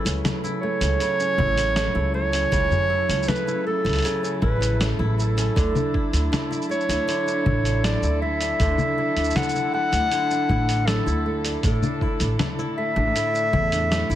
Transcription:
Already playing: C#3 F#3 C#4 E4 A4 B4
0.05 C#2 C#4, open hi-hat, shaker
0.25 A3, snare, open hi-hat, low conga, shaker
0.44 E4, shaker
0.61 A3 A4 C#5
0.81 C#2 C#4, open hi-hat, shaker
1.00 C#3, open hi-hat, shaker
1.20 C#4, shaker
1.38 A1 E4, kick, low conga
1.58 C#4, open hi-hat, shaker
1.76 A3, snare, open hi-hat, shaker
1.95 C#2 E4
2.14 A3 C#5
2.33 C#4, open hi-hat, shaker
2.52 C#2 C#3, kick, open hi-hat, shaker
2.71 C#4, low conga, shaker
2.90 E4
3.09 C#2 C#4, open hi-hat, shaker
3.23 shaker
3.28 A3 B4, snare, open hi-hat, low conga, shaker
3.35 shaker
3.47 E4, shaker
3.67 A3 A4
3.85 C#2 C#4, open hi-hat
3.89 open hi-hat
3.93 open hi-hat
3.96 open hi-hat
3.99 open hi-hat
4.02 C#3, open hi-hat
4.05 open hi-hat, shaker
4.23 C#4, shaker
4.42 A1 E4 B4, kick
4.61 C#4, open hi-hat, shaker
4.80 A3, snare, open hi-hat, shaker
4.99 A1 E4
5.18 A3 A4, shaker
5.37 C#4, open hi-hat, shaker
5.56 D2 D3, kick, open hi-hat, shaker
5.75 D4, low conga, shaker
5.94 E4, kick
6.13 D2 D4, open hi-hat, shaker
6.32 A3, snare, open hi-hat, low conga, shaker
6.51 E4, shaker
6.62 shaker
6.69 A3 C#5, shaker
6.80 shaker
6.89 D2 D4, open hi-hat, shaker
7.08 D3, open hi-hat, shaker
7.26 D4, shaker
7.46 A1 E4, kick, low conga
7.65 D4, open hi-hat, shaker
7.84 A3 D5, snare, open hi-hat, shaker
8.02 D2 E4, shaker
8.22 A3 E5
8.41 D4, open hi-hat, shaker
8.60 D2 D3, kick, open hi-hat, shaker
8.78 D4, low conga, shaker
8.98 E4
9.16 D2 D4, open hi-hat, shaker
9.24 shaker
9.30 shaker
9.36 A3 F#5, snare, open hi-hat, low conga, shaker
9.43 shaker
9.49 shaker
9.55 E4, shaker
9.73 A3 F#5
9.92 D2 D4, open hi-hat, shaker
10.11 D3, open hi-hat, shaker
10.31 D4, shaker
10.49 A1 E4, kick
10.69 D4, open hi-hat, shaker
10.87 A3 A4, snare, open hi-hat, shaker
11.06 D2 E4, shaker
11.26 A3
11.45 D4, open hi-hat, shaker
11.63 A1 A2 A4, kick, open hi-hat, shaker
11.82 D4, low conga, shaker
11.90 A3
12.01 E4, kick
12.20 A1 D4, open hi-hat, shaker
12.39 A3, snare, open hi-hat, low conga, shaker
12.59 E4, shaker
12.78 A3 E5
12.96 A1 D4
13.15 A2, open hi-hat, shaker
13.34 D4, shaker
13.53 E2 E4, kick, low conga
13.72 D4, open hi-hat, shaker
13.91 A3, snare, open hi-hat, shaker
14.09 A1 E4, shaker

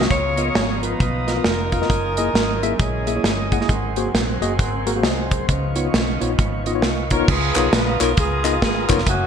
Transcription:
0.02 snare
0.10 C#2 C#3 F3 B3 C#4 F4 G#4 C#5 F5 A#5 D#6, kick, closed hi-hat
0.37 B3 F4 A#4 D#5, closed hi-hat
0.55 G#1, snare, closed hi-hat
0.83 B3 D#4 F4 A#4 B4 F5, closed hi-hat
1.00 B1, kick, closed hi-hat
1.27 B3 F4 A#4 D#5, snare, closed hi-hat
1.37 B3 F4 A#4 F5
1.44 F1 D#4 F4 A#4, snare, closed hi-hat
1.72 B3 F4 A#4 F5, kick, closed hi-hat
1.82 B3 F4 A#4 D#5, snare
1.89 F#1 F#3 G#3 A#4 D#5 G#5 D#6, kick, closed hi-hat
2.17 A#3 E4 G#4 D#5, closed hi-hat
2.34 G#1, snare, closed hi-hat
2.63 A#3 E4 G#4 E5, closed hi-hat
2.79 A#1 C#4 E4 G#4, kick, closed hi-hat
3.07 A#3 E4 G#4 E5, closed hi-hat
3.16 A#3 E4 G#4 C#5
3.24 G1, snare, closed hi-hat
3.52 A#3 E4 G#4 F#5, kick, closed hi-hat
3.61 A#3 E4 G#4 D#5, snare
3.69 G#1 G#2 F#3 C4 F#5 C6, kick, closed hi-hat
3.96 A#3 F#4 G#4 C5, closed hi-hat
4.14 A#1, snare, closed hi-hat
4.41 F#1 A#3 F#4 G#4 D#5, closed hi-hat
4.59 G#1, kick, closed hi-hat
4.86 A#3 F#4 G#4 A#4, closed hi-hat
4.96 A#3 F#4 G#4 C5
5.03 C2 C5 D#5, snare, closed hi-hat
5.31 G#4 C5, kick, closed hi-hat
5.48 C#2 C#3 D#3 F3 B3 C#4 B4 D#5 F5 C#6, kick, closed hi-hat
5.76 B3 D#4 F4 C#5, closed hi-hat
5.94 B1, snare, closed hi-hat
6.21 A#1 B3 D#4 F4 C#5, closed hi-hat
6.39 G#1, kick, closed hi-hat
6.66 B3 D#4 F4 D#5, closed hi-hat
6.75 B3 D#4 F4 C#5
6.82 C2, snare, closed hi-hat
7.11 B3 D#4 F4 A#4 C#5, kick, closed hi-hat
7.19 B3 D#4 F4 C#5
7.28 C#2 C#3 B3 F4 G#4 B4 F5 A#5 D#6, kick, crash
7.55 B1 B3 D#4 F4 A#4 C#5, clap, closed hi-hat
7.72 A#1 B4, snare, closed hi-hat
8.00 B1 B3 D#4 F4 A#4 C#5, clap, closed hi-hat
8.17 C#2 B3 F4 G#4, kick, closed hi-hat
8.44 B3 D#4 F4 A#4 D#5, clap, closed hi-hat
8.62 G#1 G#4, kick, snare, closed hi-hat
8.89 F1 B3 D#4 F4 A#4 C#5, kick, clap, closed hi-hat
8.98 snare
9.06 F#1 A#3 C#4 F#4 A#4 E5 G#5, kick, closed hi-hat

